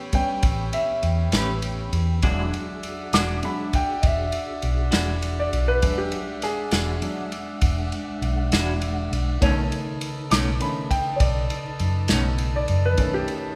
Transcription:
Already playing: B3 C#4 G4 B4 C#5 G5 B5
0.13 G3 B3 C#4 G5, kick, ride
0.43 A1, kick, ride
0.73 E5, ride
1.03 E2, ride
1.32 A1 A3 C#4 G4 B4, snare, ride
1.62 ride
1.93 E2, ride
2.22 E1 E3 F#3 G#3 D4 F#4 G#4 D5 E5 F#5, kick, ride
2.53 ride
2.83 ride
3.13 E1 E3 G#3 D4 F#4 D6, snare, ride
3.43 F#3 G#3 D4 B5, ride
3.73 G5, kick, ride
4.02 E1 D#5, kick, ride
4.07 E5
4.32 ride
4.62 B1, ride
4.91 E1 E3 G#3 D4 F#4, snare, ride
5.22 ride
5.40 D5
5.53 B1, ride
5.68 B4
5.82 E1 F#3 G#3 D4 F#5, kick, ride
5.98 G4
6.12 ride
6.42 G#4, snare, ride
6.71 E1 E3 G#3 D4 F#4, snare, ride
7.02 F#3 G#3 D4, ride
7.32 ride
7.61 E1, kick, ride
7.92 ride
8.22 B1, ride
8.52 E1 E3 G#3 D4 F#4, snare, ride
8.82 ride
9.12 B1, ride
9.40 B1 B2 C#3 D#3 A3 C#4 D#4 A4 B4 C#5 A5, kick, ride
9.72 ride
10.01 ride
10.30 B1 B2 A3 C#4 D#4 D6, snare, ride
10.60 D#3 A3 C#4 B5, ride
10.91 G5, kick, ride
11.16 C#5, kick, ride
11.20 B1 D5
11.50 ride
11.79 F#2, ride
12.08 B1 B2 A3 C#4 D#4, snare, ride
12.38 ride
12.56 D5
12.68 F#2, ride
12.85 B4
12.97 B1 D#3 A3 C#4 E4 A#4 D5, kick, ride
13.14 G4
13.28 D#4 A4 C#5, ride

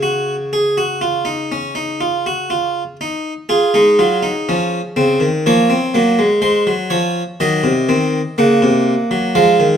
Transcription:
Already playing: C#3 C#5
0.03 F#4
0.53 G#4
0.78 F#4
1.01 F4
1.25 D#4
1.52 C#4
1.75 D#4
2.01 F4
2.26 F#4
2.50 F4
3.01 D#4
3.49 F4 G#4
3.74 G#3 D#4
3.99 F#3 F4
4.23 D#4
4.49 F3 C#4
4.96 C#3 C4
5.20 D#3
5.46 F3 A#3 C#5
5.70 C4
5.94 F#3 A#3
6.19 G#3
6.42 G#3 C5
6.67 F#3
6.90 F3 C#5
7.40 D#3 F#3 D#5
7.64 C3
7.89 D#3 C4
8.38 C#3 A#3 F#5
8.62 C3
9.11 F#3
9.35 F3 G#3 F5
9.60 D#3

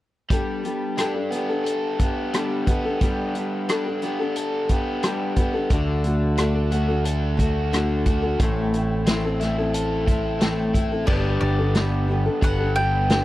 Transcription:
0.30 G3 B3 D4 G4 A4, kick, closed hi-hat
0.63 B3 D4 G4 A4, closed hi-hat
0.97 G3 B3 D4 G4 A4, cross-stick, closed hi-hat
1.14 D4 G4 A4
1.32 B3 D4 G4 A4, closed hi-hat
1.49 G4 A4
1.53 D4
1.64 A4, closed hi-hat
1.99 B3 D4 G4, kick, closed hi-hat
2.04 A4
2.33 G3 B3 D4 G4 A4, cross-stick, closed hi-hat
2.67 B3 D4 G4 A4, kick, closed hi-hat
2.85 D4 G4 A4
3.01 G3 B3 D4 G4 A4, kick, closed hi-hat
3.35 B3 D4 G4 A4, closed hi-hat
3.69 G3 B3 D4 G4 A4, cross-stick, closed hi-hat
3.86 D4 G4 A4
4.02 B3 D4 G4 A4, closed hi-hat
4.19 D4 G4 A4
4.36 A4, closed hi-hat
4.69 B3 D4 G4 A4, kick, closed hi-hat
5.03 G3 B3 D4 G4 A4, cross-stick, closed hi-hat
5.36 B3 D4 G4 A4, kick, closed hi-hat
5.54 D4 G4 A4
5.70 D2 D3 A3 D4 F#4 A4, kick, closed hi-hat
6.04 A3 D4 F#4 A4, closed hi-hat
6.37 D3 A3 D4 F#4 A4, cross-stick, closed hi-hat
6.55 D4 F#4 A4
6.71 A3 D4 F#4 A4, closed hi-hat
6.88 D4 F#4 A4
7.05 A4, closed hi-hat
7.37 A3 D4 F#4 A4, kick, closed hi-hat
7.72 D3 A3 D4 F#4 A4, cross-stick, closed hi-hat
8.06 A3 D4 F#4 A4, kick, closed hi-hat
8.22 D4 F#4 A4
8.40 A1 A2 E3 A3 C4 E4 A4, kick, closed hi-hat
8.73 A3 C4 E4 A4, closed hi-hat
9.06 A2 E3 A3 C4 E4, snare, closed hi-hat
9.11 A4
9.25 A3 C4 E4 A4
9.40 A3 C4 E4 A4, snare, closed hi-hat
9.58 A3 C4 E4 A4
9.74 A4, closed hi-hat
10.08 A3 C4 E4 A4, kick, closed hi-hat
10.41 A2 E3 A3 C4 E4 A4, snare, closed hi-hat
10.74 A3 C4 E4 A4, kick, closed hi-hat
10.92 A3 C4 E4 A4
11.07 G1 G3 B3 D4 G4 A4 B4 D5, kick, crash
11.41 G1 D5
11.59 D4 G4 A4
11.75 G3 B3 D4 G4 A4, snare, closed hi-hat
12.08 B3 D4 G4 A4
12.26 D4 G4 A4
12.41 G1 G3 B3 D4 B4 F#5, kick, closed hi-hat
12.59 D4 G4 A4
12.76 B3 D4 G4 A4 G5
13.10 G3 B3 D4 G4 A4, snare, closed hi-hat

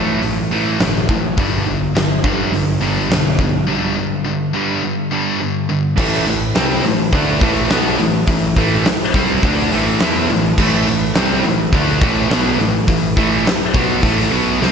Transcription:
Already playing: A1 A2 E3 A3
0.22 A1 A2 E3, open hi-hat
0.51 A1 A2 E3 A3
0.80 G1 A2 E3, snare, open hi-hat
1.09 A1 A2 E3, kick
1.37 G1 G2 D3 G3, kick, open hi-hat
1.67 G2 D3
1.94 G1 G2 D3, snare, open hi-hat
2.24 G1 G2 D3 G3, kick
2.52 G1 G2 D3, open hi-hat
2.80 G1 G2 D3 G3
3.09 B1 G2 D3, snare, open hi-hat
3.39 G2 D3, kick
3.67 G2 D3 G3
3.96 G2 D3
4.24 G2 D3
4.53 G2 D3 G3
4.83 G2 D3
5.11 G2 D3 G3
5.41 G2 D3
5.69 G2 D3
5.96 A1 A2 E3 A3 E4 B4, kick, crash
6.26 A1 A2 E3, open hi-hat
6.55 C2 C3 G3 C4, snare, open hi-hat
6.83 A1 A2 E3, open hi-hat
7.13 D2 D3 A3 D4, kick, open hi-hat
7.41 A1 A2 E3 A3, kick, open hi-hat
7.70 B1 B2 F#3 B3, snare, open hi-hat
7.99 A1 A2 E3, open hi-hat
8.27 A1 A2 E3, kick, open hi-hat
8.56 A1 A2 E3 A3, kick, open hi-hat
8.85 muted distorted electric guitar stroke, muted overdriven electric guitar stroke, snare, open hi-hat
9.14 C2 C3 G3 C4, kick, open hi-hat
9.43 D2 D3 A3 D4, kick, open hi-hat
9.72 A1 A2 E3 A3, open hi-hat
10.00 E2 E3 B3 E4, snare, open hi-hat
10.30 A1 A2 E3, open hi-hat
10.58 A1 A2 E3 A3, kick, crash
10.87 A1 A2 E3, open hi-hat
11.15 C2 C3 G3 C4, snare, open hi-hat
11.44 A1 A2 E3, open hi-hat
11.73 D2 D3 A3 D4, kick, open hi-hat
12.01 A1 A2 E3 A3, kick, open hi-hat
12.30 B1 B2 F#3 B3, snare, open hi-hat
12.59 A1 A2 E3, open hi-hat
12.88 A1 A2 E3, kick, open hi-hat
13.17 A1 A2 E3 A3, kick, open hi-hat
13.45 muted overdriven electric guitar stroke, muted distorted electric guitar stroke, muted picked electric bass stroke, snare, open hi-hat
13.74 B1 B2 F#3 B3, kick, open hi-hat
14.03 A1 A2 E3 A3, kick, open hi-hat
14.31 B1 B2 F#3 B3, open hi-hat
14.61 C2 C3 G3 C4, snare

